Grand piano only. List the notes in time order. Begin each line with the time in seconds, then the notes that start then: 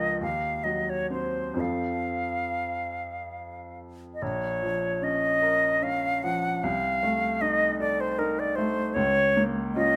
Already playing: C#2 F3 F4 A#4
0.21 D#2
0.65 F#3
1.10 C4 C5
1.54 F2 F3 C4 A4
4.22 A#1
4.63 F3
5.02 C#4
5.42 A#4
5.82 C#4
6.24 F3
6.64 C2
7.03 A3
7.42 D#4
7.80 A4
8.19 D#4
8.58 A3
8.96 C#2
9.37 A#3
9.76 C#4 F4